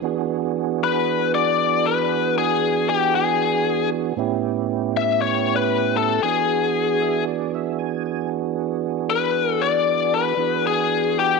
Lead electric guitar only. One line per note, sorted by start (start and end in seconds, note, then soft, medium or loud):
0.84 1.31 B4 medium
1.35 1.87 D5 medium
1.86 2.34 B4 medium
2.38 2.89 G#4 medium
2.89 3.15 G4 medium
3.15 3.89 G#4 medium
4.97 5.20 E5 medium
5.22 5.54 C#5 loud
5.56 5.96 B4 medium
5.97 6.23 A4 medium
6.23 7.23 G#4 medium
9.10 9.52 B4 medium
9.52 9.63 A4 medium
9.62 10.14 D5 loud
10.14 10.66 B4 medium
10.67 11.19 G#4 medium
11.19 11.40 G4 medium